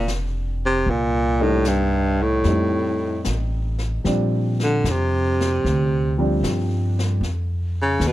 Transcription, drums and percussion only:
0, 0, Header, 1, 2, 480
1, 0, Start_track
1, 0, Key_signature, -2, "major"
1, 0, Tempo, 792602
1, 523, Time_signature, 4, 2, 24, 8
1, 4920, End_track
2, 0, Start_track
2, 0, Title_t, "Drums"
2, 49, Note_on_c, 9, 38, 43
2, 49, Note_on_c, 9, 44, 47
2, 109, Note_off_c, 9, 38, 0
2, 109, Note_off_c, 9, 44, 0
2, 525, Note_on_c, 9, 25, 34
2, 997, Note_on_c, 9, 38, 42
2, 997, Note_on_c, 9, 44, 49
2, 1057, Note_off_c, 9, 38, 0
2, 1057, Note_off_c, 9, 44, 0
2, 1476, Note_off_c, 9, 25, 0
2, 1476, Note_on_c, 9, 25, 33
2, 1476, Note_on_c, 9, 38, 26
2, 1537, Note_off_c, 9, 38, 0
2, 1965, Note_on_c, 9, 38, 43
2, 1965, Note_on_c, 9, 44, 47
2, 2026, Note_off_c, 9, 38, 0
2, 2026, Note_off_c, 9, 44, 0
2, 2292, Note_on_c, 9, 38, 25
2, 2353, Note_off_c, 9, 38, 0
2, 2453, Note_off_c, 9, 25, 0
2, 2453, Note_on_c, 9, 25, 39
2, 2453, Note_on_c, 9, 38, 37
2, 2513, Note_off_c, 9, 38, 0
2, 2783, Note_on_c, 9, 38, 31
2, 2844, Note_off_c, 9, 38, 0
2, 2938, Note_on_c, 9, 38, 52
2, 2938, Note_on_c, 9, 44, 48
2, 2999, Note_off_c, 9, 38, 0
2, 2999, Note_off_c, 9, 44, 0
2, 3273, Note_on_c, 9, 38, 35
2, 3334, Note_off_c, 9, 38, 0
2, 3426, Note_off_c, 9, 25, 0
2, 3426, Note_on_c, 9, 25, 37
2, 3426, Note_on_c, 9, 38, 36
2, 3487, Note_off_c, 9, 38, 0
2, 3899, Note_on_c, 9, 38, 54
2, 3899, Note_on_c, 9, 44, 51
2, 3959, Note_off_c, 9, 38, 0
2, 3959, Note_off_c, 9, 44, 0
2, 4233, Note_on_c, 9, 38, 35
2, 4293, Note_off_c, 9, 38, 0
2, 4379, Note_off_c, 9, 25, 0
2, 4379, Note_on_c, 9, 25, 42
2, 4379, Note_on_c, 9, 38, 36
2, 4440, Note_off_c, 9, 38, 0
2, 4849, Note_on_c, 9, 38, 52
2, 4849, Note_on_c, 9, 44, 48
2, 4910, Note_off_c, 9, 38, 0
2, 4910, Note_off_c, 9, 44, 0
2, 4920, Note_off_c, 9, 25, 0
2, 4920, End_track
0, 0, End_of_file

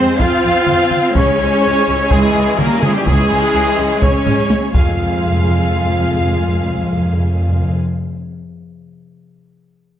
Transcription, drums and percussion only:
0, 0, Header, 1, 2, 480
1, 0, Start_track
1, 0, Key_signature, -4, "minor"
1, 0, Tempo, 478889
1, 1154, Time_signature, 4, 2, 24, 8
1, 10020, End_track
2, 0, Start_track
2, 0, Title_t, "Taiko and cinematic ensemble drums"
2, 195, Note_on_c, 9, 41, 91
2, 295, Note_off_c, 9, 41, 0
2, 671, Note_on_c, 9, 47, 80
2, 771, Note_off_c, 9, 47, 0
2, 912, Note_on_c, 9, 47, 61
2, 1012, Note_off_c, 9, 47, 0
2, 1154, Note_on_c, 9, 41, 112
2, 1254, Note_off_c, 9, 41, 0
2, 1394, Note_on_c, 9, 37, 48
2, 1494, Note_off_c, 9, 37, 0
2, 2112, Note_on_c, 9, 41, 101
2, 2213, Note_off_c, 9, 41, 0
2, 2592, Note_on_c, 9, 47, 76
2, 2692, Note_off_c, 9, 47, 0
2, 2832, Note_on_c, 9, 47, 62
2, 2933, Note_off_c, 9, 47, 0
2, 3072, Note_on_c, 9, 41, 115
2, 3173, Note_off_c, 9, 41, 0
2, 3793, Note_on_c, 9, 37, 40
2, 3893, Note_off_c, 9, 37, 0
2, 4031, Note_on_c, 9, 41, 104
2, 4131, Note_off_c, 9, 41, 0
2, 4274, Note_on_c, 9, 45, 87
2, 4374, Note_off_c, 9, 45, 0
2, 4511, Note_on_c, 9, 48, 104
2, 4611, Note_off_c, 9, 48, 0
2, 4753, Note_on_c, 9, 41, 104
2, 4853, Note_off_c, 9, 41, 0
2, 10020, End_track
0, 0, End_of_file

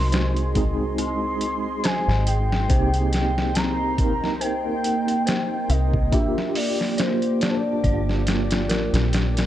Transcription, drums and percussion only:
0, 0, Header, 1, 2, 480
1, 0, Start_track
1, 0, Tempo, 857143
1, 1509, Time_signature, 4, 2, 24, 8
1, 5299, End_track
2, 0, Start_track
2, 0, Title_t, "Drums"
2, 69, Note_on_c, 9, 42, 80
2, 77, Note_on_c, 9, 38, 118
2, 125, Note_off_c, 9, 42, 0
2, 133, Note_off_c, 9, 38, 0
2, 204, Note_on_c, 9, 42, 42
2, 260, Note_off_c, 9, 42, 0
2, 309, Note_on_c, 9, 42, 70
2, 310, Note_on_c, 9, 36, 96
2, 365, Note_off_c, 9, 42, 0
2, 366, Note_off_c, 9, 36, 0
2, 550, Note_on_c, 9, 42, 86
2, 606, Note_off_c, 9, 42, 0
2, 789, Note_on_c, 9, 42, 67
2, 845, Note_off_c, 9, 42, 0
2, 1030, Note_on_c, 9, 42, 86
2, 1038, Note_on_c, 9, 38, 111
2, 1086, Note_off_c, 9, 42, 0
2, 1094, Note_off_c, 9, 38, 0
2, 1173, Note_on_c, 9, 38, 40
2, 1229, Note_off_c, 9, 38, 0
2, 1271, Note_on_c, 9, 42, 69
2, 1327, Note_off_c, 9, 42, 0
2, 1414, Note_on_c, 9, 38, 58
2, 1470, Note_off_c, 9, 38, 0
2, 1511, Note_on_c, 9, 36, 115
2, 1511, Note_on_c, 9, 42, 92
2, 1567, Note_off_c, 9, 36, 0
2, 1567, Note_off_c, 9, 42, 0
2, 1645, Note_on_c, 9, 42, 45
2, 1701, Note_off_c, 9, 42, 0
2, 1752, Note_on_c, 9, 42, 72
2, 1760, Note_on_c, 9, 38, 62
2, 1808, Note_off_c, 9, 42, 0
2, 1816, Note_off_c, 9, 38, 0
2, 1893, Note_on_c, 9, 38, 52
2, 1949, Note_off_c, 9, 38, 0
2, 1990, Note_on_c, 9, 42, 83
2, 1998, Note_on_c, 9, 38, 112
2, 2046, Note_off_c, 9, 42, 0
2, 2054, Note_off_c, 9, 38, 0
2, 2231, Note_on_c, 9, 36, 97
2, 2231, Note_on_c, 9, 42, 69
2, 2287, Note_off_c, 9, 36, 0
2, 2287, Note_off_c, 9, 42, 0
2, 2373, Note_on_c, 9, 38, 41
2, 2429, Note_off_c, 9, 38, 0
2, 2472, Note_on_c, 9, 42, 85
2, 2528, Note_off_c, 9, 42, 0
2, 2713, Note_on_c, 9, 42, 68
2, 2769, Note_off_c, 9, 42, 0
2, 2846, Note_on_c, 9, 42, 45
2, 2902, Note_off_c, 9, 42, 0
2, 2951, Note_on_c, 9, 42, 81
2, 2960, Note_on_c, 9, 38, 111
2, 3007, Note_off_c, 9, 42, 0
2, 3016, Note_off_c, 9, 38, 0
2, 3190, Note_on_c, 9, 42, 72
2, 3246, Note_off_c, 9, 42, 0
2, 3324, Note_on_c, 9, 36, 96
2, 3380, Note_off_c, 9, 36, 0
2, 3431, Note_on_c, 9, 36, 120
2, 3431, Note_on_c, 9, 42, 93
2, 3487, Note_off_c, 9, 36, 0
2, 3487, Note_off_c, 9, 42, 0
2, 3574, Note_on_c, 9, 38, 47
2, 3630, Note_off_c, 9, 38, 0
2, 3671, Note_on_c, 9, 46, 83
2, 3727, Note_off_c, 9, 46, 0
2, 3813, Note_on_c, 9, 38, 40
2, 3869, Note_off_c, 9, 38, 0
2, 3910, Note_on_c, 9, 42, 84
2, 3918, Note_on_c, 9, 38, 114
2, 3966, Note_off_c, 9, 42, 0
2, 3974, Note_off_c, 9, 38, 0
2, 4044, Note_on_c, 9, 42, 43
2, 4100, Note_off_c, 9, 42, 0
2, 4151, Note_on_c, 9, 42, 86
2, 4160, Note_on_c, 9, 38, 107
2, 4207, Note_off_c, 9, 42, 0
2, 4216, Note_off_c, 9, 38, 0
2, 4391, Note_on_c, 9, 36, 87
2, 4392, Note_on_c, 9, 42, 61
2, 4447, Note_off_c, 9, 36, 0
2, 4448, Note_off_c, 9, 42, 0
2, 4534, Note_on_c, 9, 38, 37
2, 4590, Note_off_c, 9, 38, 0
2, 4632, Note_on_c, 9, 42, 79
2, 4640, Note_on_c, 9, 38, 104
2, 4688, Note_off_c, 9, 42, 0
2, 4696, Note_off_c, 9, 38, 0
2, 4766, Note_on_c, 9, 42, 78
2, 4774, Note_on_c, 9, 38, 103
2, 4822, Note_off_c, 9, 42, 0
2, 4830, Note_off_c, 9, 38, 0
2, 4871, Note_on_c, 9, 42, 84
2, 4879, Note_on_c, 9, 38, 105
2, 4927, Note_off_c, 9, 42, 0
2, 4935, Note_off_c, 9, 38, 0
2, 5006, Note_on_c, 9, 42, 72
2, 5014, Note_on_c, 9, 38, 104
2, 5062, Note_off_c, 9, 42, 0
2, 5070, Note_off_c, 9, 38, 0
2, 5112, Note_on_c, 9, 42, 77
2, 5121, Note_on_c, 9, 38, 104
2, 5168, Note_off_c, 9, 42, 0
2, 5177, Note_off_c, 9, 38, 0
2, 5247, Note_on_c, 9, 42, 85
2, 5255, Note_on_c, 9, 38, 104
2, 5299, Note_off_c, 9, 38, 0
2, 5299, Note_off_c, 9, 42, 0
2, 5299, End_track
0, 0, End_of_file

